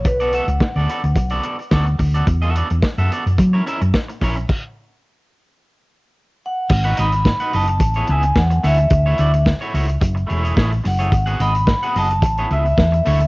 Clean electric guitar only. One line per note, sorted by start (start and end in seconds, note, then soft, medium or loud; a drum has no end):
0.06 muted clean electric guitar stroke soft
0.20 0.32 B3 medium
0.20 0.32 F#4 medium
0.20 0.34 A4 medium
0.20 0.33 D5 medium
0.33 0.45 B3 medium
0.33 0.45 F#4 medium
0.33 0.45 A4 medium
0.33 0.45 E5 medium
0.49 muted clean electric guitar stroke soft
0.61 muted clean electric guitar stroke soft
0.76 0.88 B3 medium
0.76 0.89 F#4 medium
0.76 0.89 A4 medium
0.76 0.89 D5 medium
0.89 1.00 B3 medium
0.89 1.01 F#4 medium
0.89 1.01 A4 medium
0.89 1.01 D5 medium
1.04 muted clean electric guitar stroke medium
1.16 muted clean electric guitar stroke soft
1.31 1.42 B3 medium
1.31 1.43 F#4 medium
1.31 1.44 A4 medium
1.31 1.44 D5 medium
1.43 1.55 B3 medium
1.43 1.56 F#4 medium
1.43 1.56 A4 medium
1.43 1.56 D5 medium
1.58 muted clean electric guitar stroke soft
1.71 1.86 B3 medium
1.71 1.86 F#4 medium
1.71 1.86 A4 medium
1.71 1.85 D5 medium
1.86 muted clean electric guitar stroke soft
1.99 muted clean electric guitar stroke soft
2.14 2.26 B3 medium
2.14 2.25 F#4 medium
2.14 2.25 A4 medium
2.14 2.25 D5 medium
2.27 muted clean electric guitar stroke soft
2.42 2.54 B3 medium
2.42 2.55 F#4 medium
2.42 2.56 A4 medium
2.42 2.57 E5 medium
2.55 2.67 B3 medium
2.55 2.67 F#4 medium
2.55 2.68 A4 medium
2.55 2.68 D5 medium
2.70 muted clean electric guitar stroke soft
2.84 muted clean electric guitar stroke soft
2.99 3.10 B3 medium
2.99 3.11 F#4 medium
2.99 3.11 A4 medium
2.99 3.11 E5 medium
3.11 3.22 B3 medium
3.11 3.23 F#4 medium
3.11 3.23 A4 medium
3.11 3.23 D5 medium
3.28 muted clean electric guitar stroke soft
3.38 muted clean electric guitar stroke soft
3.53 3.64 C#4 medium
3.53 3.64 E4 medium
3.53 3.64 A#4 medium
3.53 3.63 C#5 medium
3.66 3.81 C#4 medium
3.66 3.81 E4 medium
3.66 3.81 A#4 medium
3.66 3.81 E5 medium
3.81 muted clean electric guitar stroke medium
3.94 muted clean electric guitar stroke soft
4.08 muted clean electric guitar stroke soft
4.22 4.36 C#4 medium
4.22 4.37 E4 loud
4.22 4.36 A#4 loud
4.22 4.36 C#5 loud
4.37 muted clean electric guitar stroke soft
6.70 muted clean electric guitar stroke medium
6.84 6.96 D#4 medium
6.84 6.97 F#4 medium
6.84 6.98 B4 medium
6.84 6.98 F#5 medium
6.97 7.09 D#4 medium
6.97 7.10 F#4 medium
6.97 7.10 B4 medium
6.97 7.10 D#5 medium
7.13 muted clean electric guitar stroke medium
7.26 muted clean electric guitar stroke soft
7.40 7.52 D#4 medium
7.40 7.53 F#4 medium
7.40 7.53 B4 medium
7.40 7.53 F#5 medium
7.53 7.65 D#4 medium
7.53 7.65 F#4 medium
7.53 7.65 B4 medium
7.53 7.66 D#5 medium
7.69 muted clean electric guitar stroke soft
7.81 muted clean electric guitar stroke soft
7.96 8.07 B3 medium
7.96 8.06 E4 medium
7.96 8.06 G#4 medium
7.96 8.06 C#5 medium
8.09 8.24 B3 medium
8.09 8.24 E4 medium
8.09 8.23 G#4 loud
8.09 8.23 E5 medium
8.24 muted clean electric guitar stroke medium
8.36 muted clean electric guitar stroke soft
8.50 muted clean electric guitar stroke medium
8.63 8.78 A3 medium
8.63 8.79 E4 medium
8.63 8.78 F#4 loud
8.63 8.77 C#5 loud
8.79 muted clean electric guitar stroke soft
8.92 muted clean electric guitar stroke soft
9.06 9.17 A3 medium
9.06 9.18 E4 medium
9.06 9.18 F#4 medium
9.06 9.19 C#5 medium
9.18 9.30 A3 medium
9.18 9.30 E4 medium
9.18 9.31 F#4 medium
9.18 9.31 D5 medium
9.34 muted clean electric guitar stroke medium
9.47 muted clean electric guitar stroke soft
9.61 9.73 A3 medium
9.61 9.73 E4 medium
9.61 9.74 F#4 medium
9.61 9.74 C#5 medium
9.74 9.86 A3 medium
9.74 9.86 E4 medium
9.74 9.86 F#4 medium
9.74 9.86 C#5 medium
9.88 muted clean electric guitar stroke medium
10.01 muted clean electric guitar stroke soft
10.15 muted clean electric guitar stroke medium
10.27 10.43 A3 medium
10.27 10.43 E4 medium
10.27 10.43 G#4 loud
10.27 10.42 C#5 loud
10.43 10.55 A3 medium
10.43 10.54 E4 medium
10.43 10.54 G#4 medium
10.43 10.54 C#5 medium
10.56 10.71 A3 medium
10.56 10.72 E4 medium
10.56 10.71 G#4 medium
10.56 10.71 C#5 loud
10.72 muted clean electric guitar stroke soft
10.84 muted clean electric guitar stroke soft
10.99 11.10 A3 medium
10.99 11.10 E4 medium
10.99 11.10 G#4 medium
10.99 11.09 C#5 medium
11.13 muted clean electric guitar stroke soft
11.26 11.39 B3 medium
11.26 11.39 F#4 medium
11.26 11.40 G#4 medium
11.26 11.39 F#5 medium
11.40 11.51 B3 medium
11.40 11.52 F#4 medium
11.40 11.52 G#4 medium
11.40 11.52 D#5 medium
11.55 muted clean electric guitar stroke soft
11.68 muted clean electric guitar stroke medium
11.83 11.95 B3 medium
11.83 11.95 F#4 medium
11.83 11.96 G#4 medium
11.83 11.95 F#5 medium
11.96 12.07 B3 medium
11.96 12.07 F#4 medium
11.96 12.07 G#4 medium
11.96 12.08 D#5 medium
12.11 muted clean electric guitar stroke medium
12.24 muted clean electric guitar stroke soft
12.38 12.49 B3 medium
12.38 12.49 E4 medium
12.38 12.48 G#4 medium
12.38 12.48 C#5 medium
12.51 12.65 B3 medium
12.51 12.66 E4 medium
12.51 12.65 G#4 medium
12.51 12.65 E5 medium
12.66 muted clean electric guitar stroke soft
12.78 muted clean electric guitar stroke soft
12.92 muted clean electric guitar stroke medium
13.06 13.20 A3 medium
13.06 13.20 E4 medium
13.06 13.20 F#4 medium
13.06 13.19 C#5 loud
13.21 muted clean electric guitar stroke soft